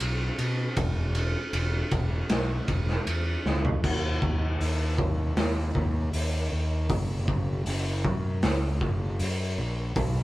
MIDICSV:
0, 0, Header, 1, 3, 480
1, 0, Start_track
1, 0, Tempo, 766284
1, 484, Time_signature, 4, 2, 24, 8
1, 6408, End_track
2, 0, Start_track
2, 0, Title_t, "Fingered electric bass"
2, 0, Program_c, 0, 33
2, 6, Note_on_c, 0, 35, 80
2, 182, Note_off_c, 0, 35, 0
2, 240, Note_on_c, 0, 47, 82
2, 418, Note_off_c, 0, 47, 0
2, 484, Note_on_c, 0, 28, 79
2, 836, Note_off_c, 0, 28, 0
2, 957, Note_on_c, 0, 28, 80
2, 1136, Note_off_c, 0, 28, 0
2, 1202, Note_on_c, 0, 28, 80
2, 1379, Note_off_c, 0, 28, 0
2, 1441, Note_on_c, 0, 35, 79
2, 1618, Note_off_c, 0, 35, 0
2, 1679, Note_on_c, 0, 28, 91
2, 1857, Note_off_c, 0, 28, 0
2, 1919, Note_on_c, 0, 40, 78
2, 2097, Note_off_c, 0, 40, 0
2, 2164, Note_on_c, 0, 37, 81
2, 2340, Note_off_c, 0, 37, 0
2, 2403, Note_on_c, 0, 39, 80
2, 2635, Note_off_c, 0, 39, 0
2, 2643, Note_on_c, 0, 39, 86
2, 2875, Note_off_c, 0, 39, 0
2, 2880, Note_on_c, 0, 39, 78
2, 3346, Note_off_c, 0, 39, 0
2, 3361, Note_on_c, 0, 39, 82
2, 3594, Note_off_c, 0, 39, 0
2, 3603, Note_on_c, 0, 39, 91
2, 3835, Note_off_c, 0, 39, 0
2, 3840, Note_on_c, 0, 39, 76
2, 4074, Note_off_c, 0, 39, 0
2, 4083, Note_on_c, 0, 39, 80
2, 4315, Note_off_c, 0, 39, 0
2, 4321, Note_on_c, 0, 30, 82
2, 4554, Note_off_c, 0, 30, 0
2, 4559, Note_on_c, 0, 30, 94
2, 4793, Note_off_c, 0, 30, 0
2, 4802, Note_on_c, 0, 30, 86
2, 5034, Note_off_c, 0, 30, 0
2, 5041, Note_on_c, 0, 42, 87
2, 5273, Note_off_c, 0, 42, 0
2, 5282, Note_on_c, 0, 37, 85
2, 5514, Note_off_c, 0, 37, 0
2, 5519, Note_on_c, 0, 30, 99
2, 5752, Note_off_c, 0, 30, 0
2, 5762, Note_on_c, 0, 42, 76
2, 5994, Note_off_c, 0, 42, 0
2, 6001, Note_on_c, 0, 34, 91
2, 6233, Note_off_c, 0, 34, 0
2, 6238, Note_on_c, 0, 35, 87
2, 6408, Note_off_c, 0, 35, 0
2, 6408, End_track
3, 0, Start_track
3, 0, Title_t, "Drums"
3, 1, Note_on_c, 9, 51, 81
3, 64, Note_off_c, 9, 51, 0
3, 241, Note_on_c, 9, 51, 59
3, 303, Note_off_c, 9, 51, 0
3, 480, Note_on_c, 9, 51, 81
3, 481, Note_on_c, 9, 36, 110
3, 542, Note_off_c, 9, 51, 0
3, 544, Note_off_c, 9, 36, 0
3, 719, Note_on_c, 9, 51, 63
3, 781, Note_off_c, 9, 51, 0
3, 959, Note_on_c, 9, 51, 77
3, 1022, Note_off_c, 9, 51, 0
3, 1198, Note_on_c, 9, 51, 59
3, 1201, Note_on_c, 9, 36, 84
3, 1261, Note_off_c, 9, 51, 0
3, 1263, Note_off_c, 9, 36, 0
3, 1437, Note_on_c, 9, 51, 74
3, 1440, Note_on_c, 9, 38, 101
3, 1500, Note_off_c, 9, 51, 0
3, 1502, Note_off_c, 9, 38, 0
3, 1678, Note_on_c, 9, 51, 62
3, 1681, Note_on_c, 9, 36, 78
3, 1740, Note_off_c, 9, 51, 0
3, 1743, Note_off_c, 9, 36, 0
3, 1802, Note_on_c, 9, 38, 29
3, 1865, Note_off_c, 9, 38, 0
3, 1922, Note_on_c, 9, 51, 77
3, 1984, Note_off_c, 9, 51, 0
3, 2165, Note_on_c, 9, 38, 60
3, 2228, Note_off_c, 9, 38, 0
3, 2285, Note_on_c, 9, 43, 82
3, 2347, Note_off_c, 9, 43, 0
3, 2404, Note_on_c, 9, 49, 110
3, 2405, Note_on_c, 9, 36, 99
3, 2467, Note_off_c, 9, 36, 0
3, 2467, Note_off_c, 9, 49, 0
3, 2644, Note_on_c, 9, 36, 82
3, 2706, Note_off_c, 9, 36, 0
3, 2885, Note_on_c, 9, 46, 52
3, 2948, Note_off_c, 9, 46, 0
3, 3122, Note_on_c, 9, 36, 87
3, 3185, Note_off_c, 9, 36, 0
3, 3362, Note_on_c, 9, 46, 52
3, 3365, Note_on_c, 9, 38, 105
3, 3425, Note_off_c, 9, 46, 0
3, 3427, Note_off_c, 9, 38, 0
3, 3602, Note_on_c, 9, 36, 72
3, 3665, Note_off_c, 9, 36, 0
3, 3842, Note_on_c, 9, 46, 58
3, 3905, Note_off_c, 9, 46, 0
3, 4318, Note_on_c, 9, 46, 59
3, 4320, Note_on_c, 9, 36, 108
3, 4381, Note_off_c, 9, 46, 0
3, 4383, Note_off_c, 9, 36, 0
3, 4560, Note_on_c, 9, 36, 89
3, 4623, Note_off_c, 9, 36, 0
3, 4798, Note_on_c, 9, 46, 57
3, 4861, Note_off_c, 9, 46, 0
3, 5040, Note_on_c, 9, 36, 87
3, 5102, Note_off_c, 9, 36, 0
3, 5278, Note_on_c, 9, 46, 57
3, 5280, Note_on_c, 9, 38, 105
3, 5340, Note_off_c, 9, 46, 0
3, 5343, Note_off_c, 9, 38, 0
3, 5519, Note_on_c, 9, 36, 75
3, 5582, Note_off_c, 9, 36, 0
3, 5759, Note_on_c, 9, 46, 59
3, 5822, Note_off_c, 9, 46, 0
3, 6237, Note_on_c, 9, 46, 53
3, 6239, Note_on_c, 9, 36, 118
3, 6299, Note_off_c, 9, 46, 0
3, 6302, Note_off_c, 9, 36, 0
3, 6408, End_track
0, 0, End_of_file